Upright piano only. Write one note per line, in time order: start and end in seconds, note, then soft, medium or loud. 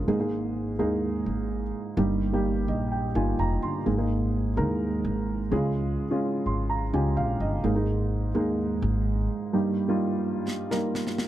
0.00 0.10 F4 medium
0.00 0.08 G#4 medium
0.07 0.75 G#2 medium
0.07 0.18 G#3 medium
0.07 0.18 A#3 medium
0.07 0.18 D#4 medium
0.07 0.18 G#4 medium
0.19 0.71 G#3 medium
0.19 0.72 A#3 medium
0.19 0.72 D#4 medium
0.19 0.72 G#4 medium
0.79 1.62 G#3 medium
0.79 1.62 A#3 medium
0.79 1.62 D#4 medium
0.79 1.62 G#4 medium
1.97 2.64 G2 medium
1.97 2.28 G3 medium
1.97 2.28 A#3 medium
1.97 2.28 D#4 medium
1.97 2.29 G4 medium
2.33 3.05 G3 medium
2.33 3.05 A#3 medium
2.33 3.05 D#4 medium
2.33 3.06 G4 medium
2.68 2.90 D#5 medium
2.92 3.14 G5 medium
3.15 3.77 G3 medium
3.15 3.78 A#3 medium
3.15 3.78 D#4 medium
3.15 3.78 F4 medium
3.15 3.38 G#5 medium
3.39 3.61 A#5 medium
3.63 3.85 C6 medium
3.86 4.53 G#2 medium
3.86 3.96 G#3 medium
3.86 3.97 A#3 medium
3.86 3.97 D#4 medium
3.86 3.97 G#4 medium
3.98 4.50 G#3 medium
3.98 4.50 A#3 medium
3.98 4.50 D#4 medium
3.98 4.50 G#4 medium
4.57 5.40 G#3 medium
4.57 5.40 A#3 medium
4.57 5.40 D#4 medium
4.57 5.40 A#4 medium
5.51 6.19 C#3 medium
5.51 6.03 G#3 medium
5.51 6.03 C#4 medium
5.51 6.04 F4 medium
5.51 6.04 G#4 medium
6.11 6.83 G#3 medium
6.11 6.83 C#4 medium
6.11 6.84 F4 medium
6.11 6.84 G#4 medium
6.46 6.68 C6 medium
6.70 6.92 A#5 medium
6.93 7.55 G#3 medium
6.93 7.56 C#4 medium
6.93 7.56 F4 medium
6.93 7.56 G4 medium
6.93 7.16 G#5 medium
7.17 7.39 F5 medium
7.41 7.63 D#5 medium
7.64 8.31 G#2 medium
7.64 7.74 G#3 medium
7.64 7.74 A#3 medium
7.64 7.74 D#4 medium
7.64 7.74 G#4 medium
7.75 8.27 G#3 medium
7.75 8.28 A#3 medium
7.75 8.28 D#4 medium
7.75 8.28 G#4 medium
8.34 9.18 G#3 medium
8.34 9.18 A#3 medium
8.34 9.18 D#4 medium
8.34 9.18 G#4 medium
9.53 10.20 G2 medium
9.53 9.84 G3 medium
9.53 9.84 A#3 medium
9.53 9.85 D#4 medium
9.53 9.85 G4 medium
9.88 10.61 G3 medium
9.88 10.61 A#3 medium
9.88 10.61 D#4 medium
9.88 10.62 F4 medium
10.71 11.28 G3 medium
10.71 11.28 A#3 medium
10.71 11.28 D#4 medium
10.71 11.28 A#4 medium